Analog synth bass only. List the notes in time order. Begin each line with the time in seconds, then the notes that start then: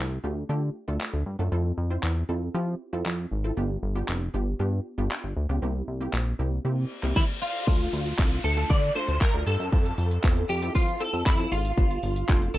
0.00 C2
0.24 D2
0.49 D3
0.88 D2
1.13 D2
1.26 G2
1.39 F#2
1.52 F2
1.78 F2
2.03 E2
2.29 F2
2.55 F3
2.93 F2
3.06 F2
3.31 G#1
3.57 G1
3.83 G1
4.08 F1
4.34 G1
4.60 G2
4.98 G1
5.24 G1
5.37 D2
5.49 C#2
5.62 C2
5.88 C2
6.13 A#1
6.39 C2
6.65 C3
7.03 C2
7.67 D2
7.93 D2
8.19 C2
8.44 D2
8.70 D3
9.08 D2
9.34 D2
9.47 G2
9.60 F#2
9.73 F2
9.98 F2
10.24 E2
10.49 F2
10.75 F3
11.13 F2
11.26 F2
11.52 G#1
11.78 G1
12.03 G1
12.29 F1
12.54 G1